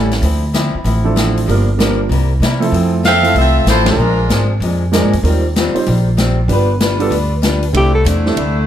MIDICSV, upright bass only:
0, 0, Header, 1, 3, 480
1, 0, Start_track
1, 0, Key_signature, 0, "major"
1, 0, Tempo, 313152
1, 342, Time_signature, 4, 2, 24, 8
1, 13283, End_track
2, 0, Start_track
2, 0, Title_t, "Upright bass"
2, 0, Program_c, 0, 32
2, 0, Note_on_c, 0, 33, 83
2, 285, Note_off_c, 0, 33, 0
2, 333, Note_on_c, 0, 38, 93
2, 1065, Note_off_c, 0, 38, 0
2, 1293, Note_on_c, 0, 33, 87
2, 2208, Note_off_c, 0, 33, 0
2, 2263, Note_on_c, 0, 31, 88
2, 3174, Note_off_c, 0, 31, 0
2, 3207, Note_on_c, 0, 36, 87
2, 3660, Note_off_c, 0, 36, 0
2, 3678, Note_on_c, 0, 48, 75
2, 4135, Note_off_c, 0, 48, 0
2, 4165, Note_on_c, 0, 41, 88
2, 5084, Note_off_c, 0, 41, 0
2, 5130, Note_on_c, 0, 36, 86
2, 5582, Note_off_c, 0, 36, 0
2, 5591, Note_on_c, 0, 33, 78
2, 6052, Note_off_c, 0, 33, 0
2, 6077, Note_on_c, 0, 34, 91
2, 6535, Note_off_c, 0, 34, 0
2, 6576, Note_on_c, 0, 32, 77
2, 7025, Note_off_c, 0, 32, 0
2, 7053, Note_on_c, 0, 41, 84
2, 7653, Note_off_c, 0, 41, 0
2, 7706, Note_on_c, 0, 44, 66
2, 7853, Note_off_c, 0, 44, 0
2, 7865, Note_on_c, 0, 40, 72
2, 8013, Note_off_c, 0, 40, 0
2, 8019, Note_on_c, 0, 39, 87
2, 8749, Note_off_c, 0, 39, 0
2, 8991, Note_on_c, 0, 34, 89
2, 9899, Note_off_c, 0, 34, 0
2, 9933, Note_on_c, 0, 31, 87
2, 10850, Note_off_c, 0, 31, 0
2, 10892, Note_on_c, 0, 38, 85
2, 11810, Note_off_c, 0, 38, 0
2, 11854, Note_on_c, 0, 36, 87
2, 12325, Note_off_c, 0, 36, 0
2, 12339, Note_on_c, 0, 40, 88
2, 12808, Note_off_c, 0, 40, 0
2, 12824, Note_on_c, 0, 38, 83
2, 13283, Note_off_c, 0, 38, 0
2, 13283, End_track
3, 0, Start_track
3, 0, Title_t, "Muted upright bass strokes"
3, 1142, Note_on_c, 9, 29, 44
3, 1296, Note_off_c, 9, 29, 0
3, 8800, Note_on_c, 9, 29, 41
3, 8953, Note_off_c, 9, 29, 0
3, 13283, End_track
0, 0, End_of_file